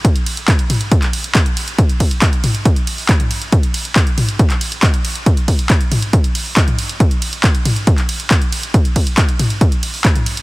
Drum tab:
RD |--x---x---x---x-|--x---x---x---x-|--x---x---x---x-|--x---x---x---x-|
HH |xxoxxxoxxxoxxxox|xxoxxxoxxxooxxox|xxoxxxoxxxoxxxox|xxoxxxoxxxooxxox|
CP |----x----x--x---|----x-------x---|----x----x--x---|----x-------x---|
T2 |------o---------|------o------o--|------o---------|------o------o--|
BD |o---o---o---o---|o-o-o---o---o---|o---o---o---o---|o-o-o---o---o---|

RD |--x---x---x---x-|--x---x---x---x-|
HH |xxoxxxoxxxoxxxox|xxoxxxoxxxooxxox|
CP |----x----x--x---|----x-------x---|
T2 |------o---------|------o------o--|
BD |o---o---o---o---|o-o-o---o---o---|